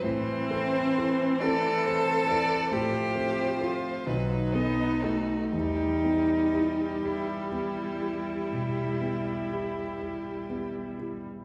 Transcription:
X:1
M:12/8
L:1/16
Q:3/8=41
K:Em
V:1 name="Violin"
c6 d2 c2 d2 c6 B2 ^d2 F2 | G16- G4- G z3 |]
V:2 name="Cello"
C6 A6 G4 =F2 ^D6 | ^D6 E16 z2 |]
V:3 name="Grand piano"
A,,2 [CA]2 [EA]2 [EA]2 [CA]2 [EA]2 A,,2 [CA]2 [=FA]2 B,,,2 [B,A]2 [^FA]2 | E,,2 [B,G]2 [EG]2 [EG]2 [B,G]2 [EG]2 B,,2 [B,G]2 [EG]2 [EG]2 [B,G]2 [EG]2 |]
V:4 name="Viola" clef=bass
E,12 =F,6 ^F,2 B,2 A,2 | G,24 |]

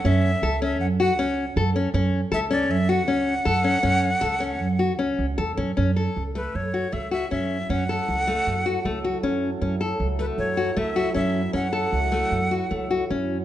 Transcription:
X:1
M:5/4
L:1/8
Q:1/4=156
K:F#m
V:1 name="Flute"
e3 e f f3 z2 | z2 e d e f4- f- | f8 z2 | z3 B c2 e e e2 |
f8 z2 | z3 B c2 e2 e2 | f8 z2 |]
V:2 name="Ambient pad"
z8 z2 | z8 z2 | z8 z2 | [F,EA]8- [F,EA]2- |
[F,EA]8- [F,EA]2- | [F,EA]8- [F,EA]2- | [F,EA]8- [F,EA]2 |]
V:3 name="Nylon-string guitar"
C2 A C2 F C2 A C | C2 A C2 F C2 A C | C2 A C2 F C2 A C | C A2 A,2 F A, F C2 |
C A2 A,2 F A, F C2 | C A2 A,2 F A, F C2 | C A2 A,2 F A, F C2 |]
V:4 name="Upright bass" clef=bass
F,,2 C,,2 F,,2 C,,2 F,,2 | F,,2 C,,2 F,,2 C,,2 F,,2 | F,,2 C,,2 F,,2 C,, C,, E,, F,, | F,,2 C,,2 F,,2 C,,2 F,,2 |
F,,2 C,,2 F,,2 C,,2 F,,2 | F,,2 C,,2 F,,2 C,,2 F,,2 | F,,2 C,,2 F,,2 C,,2 F,,2 |]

